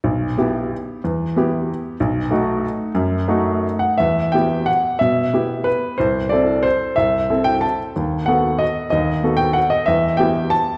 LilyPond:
\new Staff \with { instrumentName = "Grand piano" } { \time 3/4 \key e \minor \tempo 4 = 184 << { r2. | r2. | r2. | r2 r8 fis''8 |
e''4 g''4 fis''4 | e''2 b'4 | c''4 d''4 c''4 | e''4. g''8 a''8 r8 |
r4 fis''4 dis''4 | dis''4. g''8 fis''8 dis''8 | e''4 g''4 a''4 | } \\ { b,,4 <b e' g'>2 | e,4 <b e' g'>2 | b,,4 <a dis' fis'>2 | fis,4 <a dis' fis'>2 |
e,4 <b e' g'>2 | b,4 <b e' g'>2 | c,4 <c' e' a'>2 | c,4 <c' e' a'>2 |
dis,4 <b fis' a'>2 | dis,4 <b fis' a'>2 | e,4 <b e' g'>2 | } >> }